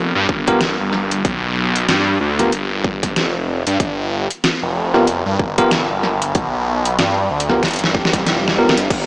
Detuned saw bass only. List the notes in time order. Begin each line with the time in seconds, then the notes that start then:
Already playing: F1
0.15 G2
0.29 G1
0.79 G1
1.25 B1
1.88 G2
2.21 D2
2.52 G1
3.16 F1
3.67 G2
3.80 G1
4.62 F1
5.26 G2
5.39 G1
5.90 G1
6.35 B1
6.99 G2
7.30 D2
7.63 G1
8.13 F1
8.77 G1
8.90 G1